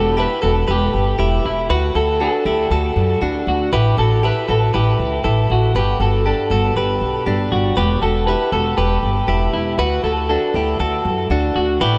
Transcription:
0.00 0.24 E1 medium
0.00 0.17 F#4 soft
0.00 0.18 A4 medium
0.17 0.41 E4 soft
0.17 0.42 G4 medium
0.17 0.44 B4 medium
0.42 0.64 E1 medium
0.42 0.68 F#4 medium
0.42 0.67 A4 medium
0.68 0.89 E1 medium
0.68 1.16 G4 medium
0.68 1.16 B4 medium
0.94 1.15 G1 medium
1.19 1.40 E1 medium
1.19 1.67 E4 medium
1.19 1.66 G4 medium
1.45 1.66 E1 medium
1.45 1.71 E4 medium
1.70 1.91 D2 medium
1.70 1.95 F#4 medium
1.70 1.95 B4 medium
1.95 2.26 D2 medium
1.95 2.19 F#4 soft
1.95 2.21 A4 medium
2.20 2.46 D4 medium
2.20 2.46 F#4 medium
2.20 3.18 A4 medium
2.45 2.66 D2 medium
2.45 2.71 E4 soft
2.45 2.71 G4 medium
2.70 2.91 D2 medium
2.70 3.19 F#4 medium
2.70 3.19 A4 medium
2.96 3.17 F#2 medium
3.21 3.42 D2 medium
3.21 3.70 D4 medium
3.21 3.69 F#4 medium
3.47 3.68 D2 medium
3.47 3.71 F#4 medium
3.72 3.93 A1 medium
3.72 3.98 E4 medium
3.72 3.99 G4 medium
3.72 3.98 B4 medium
3.97 4.29 A1 medium
3.97 4.23 F#4 soft
3.97 4.23 A4 medium
4.23 4.48 E4 medium
4.23 4.48 G4 medium
4.23 4.50 B4 medium
4.48 4.69 A1 medium
4.48 4.74 F#4 soft
4.48 4.74 A4 medium
4.74 4.95 A1 medium
4.74 5.22 E4 medium
4.74 5.46 G4 medium
4.74 5.21 B4 medium
4.99 5.20 C#2 medium
5.24 5.45 A1 medium
5.24 5.72 E4 medium
5.24 5.72 A4 medium
5.50 5.70 A1 medium
5.50 5.76 F#4 medium
5.75 5.95 G1 medium
5.75 6.01 G4 medium
5.75 6.00 B4 loud
6.00 6.31 G1 medium
6.00 6.25 F#4 soft
6.00 6.26 A4 medium
6.26 6.51 D4 soft
6.26 6.51 G4 medium
6.26 7.23 A4 medium
6.50 6.71 G1 medium
6.50 6.76 F#4 medium
6.50 6.76 A4 medium
6.76 6.97 G1 medium
6.76 7.24 G4 medium
6.76 7.24 B4 medium
7.01 7.22 B1 medium
7.26 7.47 G1 medium
7.26 7.74 D4 medium
7.26 7.74 G4 medium
7.52 7.72 G1 medium
7.52 7.77 F#4 medium
7.77 7.98 E1 medium
7.77 8.02 G4 medium
7.77 8.01 B4 medium
8.02 8.33 E1 medium
8.02 8.28 F#4 soft
8.02 8.27 A4 medium
8.27 8.53 E4 medium
8.27 8.53 G4 medium
8.27 8.52 B4 medium
8.52 8.73 E1 medium
8.52 8.78 F#4 soft
8.52 8.77 A4 medium
8.78 8.99 E1 medium
8.78 9.26 G4 medium
8.78 9.25 B4 medium
9.03 9.24 G1 medium
9.28 9.49 E1 medium
9.28 9.76 E4 medium
9.28 9.76 G4 medium
9.53 9.74 E1 medium
9.53 9.78 E4 medium
9.78 9.99 D2 medium
9.78 10.04 F#4 medium
9.78 10.04 B4 medium
10.04 10.35 D2 medium
10.04 10.29 F#4 soft
10.04 10.30 A4 medium
10.29 10.55 D4 medium
10.29 10.55 F#4 medium
10.29 11.27 A4 medium
10.54 10.75 D2 medium
10.54 10.80 E4 medium
10.54 10.80 G4 medium
10.79 11.01 D2 medium
10.79 11.28 F#4 medium
10.79 11.28 A4 medium
11.05 11.26 F#2 medium
11.30 11.51 D2 medium
11.30 11.79 D4 medium
11.30 11.78 F#4 medium
11.55 11.76 D2 medium
11.55 11.79 F#4 medium
11.81 11.98 A1 medium
11.81 11.98 E4 medium
11.81 11.98 G4 medium
11.81 11.98 B4 medium

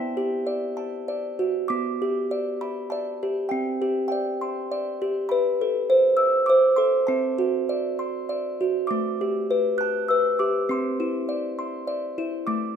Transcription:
0.00 0.47 B3 medium
0.00 0.42 G5 medium
0.17 0.46 G4 medium
0.47 1.07 D5 medium
0.77 1.69 A5 medium
1.08 1.69 D5 medium
1.39 1.69 F#4 medium
1.68 2.91 B3 medium
1.68 2.26 D6 medium
2.02 3.22 G4 medium
2.31 2.91 D5 medium
2.61 2.92 B5 medium
2.90 3.51 D5 medium
2.90 3.52 A5 medium
3.23 3.52 G4 medium
3.49 4.71 C4 medium
3.49 4.07 G5 medium
3.82 5.00 G4 medium
4.08 4.70 D5 medium
4.08 4.95 G5 medium
4.41 5.31 C6 medium
4.72 5.31 D5 medium
5.02 5.31 G4 medium
5.29 6.49 B4 medium
5.29 6.14 B5 medium
5.61 6.77 A4 medium
5.90 6.48 C5 medium
6.17 6.45 E6 medium
6.46 7.08 C5 medium
6.46 6.60 D6 medium
6.76 7.08 A4 medium
6.76 7.05 C6 medium
7.07 8.28 C4 medium
7.07 7.63 A5 medium
7.38 8.59 F#4 medium
7.69 8.28 D5 medium
7.99 8.90 C6 medium
8.29 8.89 D5 medium
8.61 8.90 F#4 medium
8.87 10.10 A3 medium
8.87 9.81 D6 medium
9.21 10.38 G4 medium
9.51 10.09 B4 medium
9.78 10.70 A5 medium
9.78 10.10 F#6 medium
10.08 10.69 B4 medium
10.08 10.22 E6 medium
10.39 10.69 G4 medium
10.39 10.70 D6 medium
10.69 11.87 C4 medium
10.69 11.25 C6 medium
11.00 12.17 E4 medium
11.29 11.86 D5 medium
11.59 12.47 C6 medium
11.87 12.46 D5 medium
12.18 12.47 E4 medium
12.47 12.76 A3 medium
12.47 12.76 D6 medium

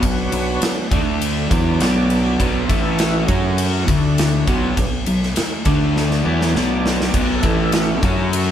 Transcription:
0.00 0.30 B1 medium
0.00 0.26 B2 medium
0.00 0.87 F#3 medium
0.00 0.26 F#3 medium
0.00 0.87 B3 soft
0.00 0.88 D4 medium
0.00 kick medium
0.00 ride medium
0.05 0.61 F#4 medium
0.32 0.60 B1 medium
0.32 0.56 B2 medium
0.32 0.56 F#3 medium
0.32 ride medium
0.62 muted overdriven electric guitar stroke medium
0.62 muted fingered electric bass stroke soft
0.62 snare loud
0.62 ride medium
0.91 1.47 D2 medium
0.91 1.50 D3 medium
0.91 1.48 D3 medium
0.91 1.50 A3 medium
0.91 1.48 A3 medium
0.91 1.50 D4 loud
0.91 1.49 D4 medium
0.91 kick loud
0.91 ride medium
1.22 ride medium
1.50 1.79 E2 medium
1.50 1.80 E3 medium
1.50 2.65 F#3 medium
1.50 2.65 B3 soft
1.50 1.80 B3 medium
1.50 2.66 D4 medium
1.50 1.80 E4 loud
1.50 kick loud
1.50 ride medium
1.80 2.36 B1 medium
1.80 2.39 B2 medium
1.80 2.39 F#3 medium
1.80 2.39 B3 medium
1.80 1.95 D5 loud
1.80 snare loud
1.80 ride medium
1.97 2.54 D5 medium
2.10 ride medium
2.40 2.68 B1 medium
2.40 2.69 B2 loud
2.40 2.69 F#3 loud
2.40 2.69 B3 loud
2.40 kick medium
2.40 ride medium
2.54 2.97 A4 medium
2.67 3.25 A1 medium
2.67 3.28 A2 medium
2.67 3.24 E3 medium
2.67 3.28 E3 medium
2.67 2.95 A3 medium
2.67 3.28 A3 loud
2.67 3.25 E4 medium
2.67 kick medium
2.67 ride medium
2.96 3.86 A3 medium
2.96 4.72 F#4 loud
2.96 snare loud
2.96 ride medium
3.27 3.84 F#2 medium
3.27 3.67 C#3 medium
3.27 3.67 F#3 soft
3.27 3.88 F#3 medium
3.27 3.68 C#4 medium
3.27 3.88 C#4 medium
3.27 3.89 F#4 medium
3.27 kick loud
3.27 ride medium
3.58 ride medium
3.87 4.43 D2 medium
3.87 4.27 D3 medium
3.87 4.46 D3 medium
3.87 4.27 A3 soft
3.87 4.47 A3 loud
3.87 4.28 D4 medium
3.87 4.47 D4 loud
3.87 kick loud
3.87 ride medium
4.18 snare loud
4.18 ride medium
4.46 4.75 B1 medium
4.46 4.76 B2 medium
4.46 4.86 F#3 medium
4.46 4.76 F#3 loud
4.46 4.86 B3 medium
4.46 4.76 B3 loud
4.46 4.86 D4 medium
4.46 kick medium
4.46 ride medium
4.77 5.05 B1 medium
4.77 5.01 B2 medium
4.77 5.01 F#3 medium
4.77 kick medium
4.77 ride medium
5.06 5.35 B1 medium
5.06 5.31 B2 medium
5.06 5.31 F#3 medium
5.06 ride medium
5.23 snare soft
5.36 muted overdriven electric guitar stroke medium
5.36 muted fingered electric bass stroke soft
5.36 snare loud
5.36 ride medium
5.64 6.21 D2 medium
5.64 6.21 D3 medium
5.64 6.24 D3 medium
5.64 6.22 A3 soft
5.64 6.25 A3 medium
5.64 6.22 D4 medium
5.64 6.25 D4 medium
5.64 kick loud
5.64 ride medium
5.96 snare medium
6.11 snare medium
6.23 6.53 E2 medium
6.23 6.54 E3 medium
6.23 7.09 F#3 medium
6.23 7.10 B3 soft
6.23 6.54 B3 medium
6.23 7.10 D4 medium
6.23 6.54 E4 medium
6.41 snare medium
6.55 7.10 B1 medium
6.55 7.13 B2 medium
6.55 7.13 F#3 medium
6.55 7.13 B3 medium
6.55 6.69 D5 medium
6.55 snare medium
6.71 7.27 D5 medium
6.86 snare medium
7.01 snare medium
7.14 7.41 B1 medium
7.14 7.44 B2 medium
7.14 7.45 F#3 loud
7.14 7.45 B3 loud
7.14 kick medium
7.14 ride medium
7.14 crash medium
7.30 7.73 A4 medium
7.42 7.99 A1 medium
7.42 8.03 A2 medium
7.42 7.99 E3 medium
7.42 8.03 E3 medium
7.42 7.72 A3 soft
7.42 8.04 A3 loud
7.42 8.00 E4 medium
7.42 kick loud
7.42 ride medium
7.72 8.51 A3 medium
7.72 8.51 F#4 loud
7.72 snare loud
7.72 ride medium
8.03 8.51 F#2 medium
8.03 8.43 C#3 medium
8.03 8.51 F#3 medium
8.03 8.43 F#3 medium
8.03 8.51 C#4 loud
8.03 8.43 C#4 medium
8.03 8.51 F#4 loud
8.03 kick loud
8.03 ride medium
8.33 ride medium

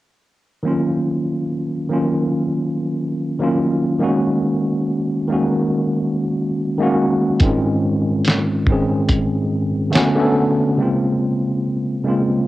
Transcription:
0.63 1.44 D#3 medium
0.63 1.44 F#3 medium
0.63 1.45 A#3 medium
0.63 1.45 C#4 medium
0.67 1.46 F4 medium
1.89 2.84 D#3 medium
1.89 2.84 F#3 medium
1.89 2.85 A#3 medium
1.89 2.85 C#4 medium
1.93 2.86 F4 medium
3.39 3.80 D#3 medium
3.39 3.80 F#3 medium
3.39 3.81 A#3 medium
3.39 3.81 C#4 medium
3.44 3.82 F4 medium
3.99 4.81 D#3 medium
3.99 4.81 G#3 medium
3.99 4.82 A#3 medium
3.99 4.83 C#4 medium
4.03 4.83 F#4 medium
5.28 6.22 D#3 medium
5.28 6.23 G#3 medium
5.28 6.23 A#3 medium
5.28 6.24 C#4 medium
5.33 6.24 F#4 medium
6.78 7.18 D#3 medium
6.78 7.19 G#3 medium
6.78 7.19 A#3 medium
6.78 7.20 C#4 medium
6.82 7.20 F#4 loud
7.40 8.20 G#2 medium
7.40 8.21 D#3 medium
7.40 8.21 G#3 medium
7.40 8.22 C4 medium
7.40 kick loud
7.40 closed hi-hat medium
7.44 8.22 C#4 medium
7.44 8.23 F4 medium
8.24 snare loud
8.24 closed hi-hat medium
8.67 9.61 G#2 medium
8.67 9.61 D#3 medium
8.67 9.62 G#3 medium
8.67 9.62 C4 medium
8.67 kick medium
8.71 9.63 C#4 medium
8.71 9.63 G#4 medium
9.09 kick medium
9.09 closed hi-hat medium
9.91 10.11 D3 loud
9.91 10.12 A3 loud
9.91 10.12 B3 medium
9.91 10.13 C#4 loud
9.91 closed hi-hat medium
9.95 10.14 F#4 loud
9.95 snare loud
10.16 10.56 D3 loud
10.16 10.57 A3 medium
10.16 10.57 B3 medium
10.16 10.58 C#4 medium
10.20 10.58 A4 loud
10.78 11.58 C#3 medium
10.78 11.59 G#3 medium
10.78 11.59 A#3 medium
10.78 11.60 C4 medium
10.82 11.61 F4 medium
12.04 12.47 C#3 medium
12.04 12.47 G#3 medium
12.04 12.47 A#3 medium
12.04 12.47 C4 medium
12.08 12.47 F4 medium

